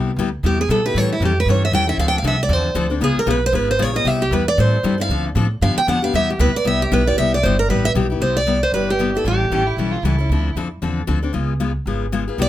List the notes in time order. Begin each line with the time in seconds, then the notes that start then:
Already playing: C2 G3 B3 E4 G4
0.16 D2 C3 G3 B3 E4 G4
0.43 E2 C3 G3 B3 E4 G4
0.61 G#4
0.69 B2 C3 G3 B3 E4 G4 A4
0.86 B3 E4 G4 B4
0.94 A2 E3 G3 C#4 E4 A4 C#5
1.13 E4
1.20 F2 E3 G3 C#4 E4 A4
1.25 G4
1.40 B4
1.46 G2 E3 G3 C#4 E4 A4
1.50 C#5
1.65 E5
1.71 E2 E3 G3 C#4 E4 A4 G5
1.87 C#4 E4 A4 E5
1.97 D2 D3 F3 C4 D4 A4 F5
2.08 G5
2.18 F5
2.22 C2 D3 F3 C4 D4 A4
2.27 E5
2.43 D5
2.49 E2 D3 F3 C4 D4 A4
2.53 C5
2.75 D2 D3 F3 C4 D4 A4
2.90 C4 D4 A4
3.00 C#2 C#3 G#3 B3 F4 G#4
3.16 A#4, muted upright bass stroke
3.26 B1 C#3 G#3 B3 F4 G#4
3.31 B4
3.46 C5
3.53 G#1 C#3 G#3 B3 F4 G#4 B4
3.71 C5
3.79 A#1 C#3 G#3 B3 F4 G#4 C#5
3.94 B3 F4 G#4 D#5
4.05 C2 C3 G3 B3 E4 G4 E5
4.22 G4
4.31 E2 C3 G3 B3 E4 G4 B4
4.48 D5
4.58 A2 E3 G3 C4 E4 A4 C5
4.83 G2 E3 G3 C4 E4 A4
4.98 C4 E4 A4 F5
5.09 D2 D3 F3 C4 D4 A4
5.35 A2 D3 F3 C4 D4 A4
5.61 G2 D3 F3 B3 D4 G4 F5
5.76 G5, muted upright bass stroke
5.87 F2 D3 F3 B3 D4 G4 F#5
6.02 B3 D4 G4 F5
6.13 E2 C3 G3 B3 E4 G4 E5
6.30 G4
6.39 D2 C3 G3 B3 E4 G4 B4
6.56 D5
6.65 C2 C3 G3 B3 E4 G4 E5
6.82 G4
6.92 B1 C3 G3 B3 E4 G4 B4
7.07 B3 E4 G4 D5
7.17 C2 C3 G3 B3 E4 G4 E5
7.34 D5
7.43 G1 C3 G3 B3 E4 G4 C5
7.59 A#4
7.69 A1 C3 G3 B3 E4 G4 B4
7.85 E5
7.95 B1 C3 G3 B3 E4 G4
8.10 B3 E4 G4
8.20 C2 C3 G3 B3 E4 G4 C5
8.37 D5
8.47 C3 G3 B3 E4 G4
8.63 C5
8.72 G1 C3 G3 B3 E4 G4 B4
8.90 G4
8.99 C3 G3 B3 E4 G4
9.15 B3 E4 G4 A4
9.24 A1 E3 G3 C#4 E4 G4 A4
9.50 A1 E3 G3 C#4 E4 G4 A4
9.66 E4
9.77 B1 E3 G3 C#4 E4 A4
9.91 F4
10.03 C#2 E3 G3 C#4 E4 A4
10.18 C#4 E4 A4
10.29 D2 D3 F3 C4 D4 A4
10.55 F2 D3 F3 C4 D4 A4
10.82 E2 D3 F3 C4 D4 A4
11.07 D2 D3 F3 C4 D4 A4
11.23 C4 D4 A4
11.33 C#2 C#3 G#3 B3 F4 G#4
11.60 C#3 G#3 B3 F4 G#4
11.86 G#1 C#3 G#3 B3 F4 G#4
12.12 C#3 G#3 B3 F4 G#4
12.28 B3 F4 G#4
12.38 C2 C3 G3 B3 E4 G4 D5